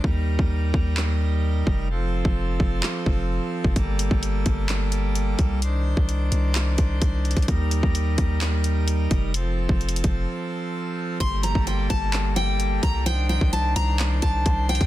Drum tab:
HH |------------------------------------------------------------------------------------------------|------------------------------------------------------------------------------------------------|x-----------x-----------x-----------x-----------x-----------x-----------x-----------x-----------|x-----------------------x-----------x-----------x-----------x-----------x-----------x--x--x--x--|
CP |------------------------------------------------x-----------------------------------------------|------------------------------------------------x-----------------------------------------------|------------------------------------------------x-----------------------------------------------|------------------------------------------------x-----------------------------------------------|
BD |o-----------------o-----------------o-----------------------------------------------o-----------|------------------o-----------------o-----------------------o-----------------------------o-----|o-----------------o-----------------o-----------------------------------------------o-----------|------------------o-----------------------------------------o-----------o-----------------o-----|

HH |x-----------x-----------x-----------x-----------x-----------x-----------x-----------x-----------|x-----------------------x---x---x---x-----------------------------------------------------------|x-----------x-----------x-----------x-----------x-----------x-----------x-----------x-----------|x-----------------------x-----------x-----------x-----------x-----------x-----------x--x--x-----|
CP |------------------------------------------------x-----------------------------------------------|------------------------------------------------------------------------------------------------|------------------------------------------------x-----------------------------------------------|------------------------------------------------x-----------------------------------------------|
BD |o-----------------o-----------------o-----------------------------------------------o-----------|------------------o-----------------o-----------------------------------------------------------|o-----------------o-----------------o-----------------------------------------------o-----------|------------------o-----------------------------------------o-----------o-----------------o-----|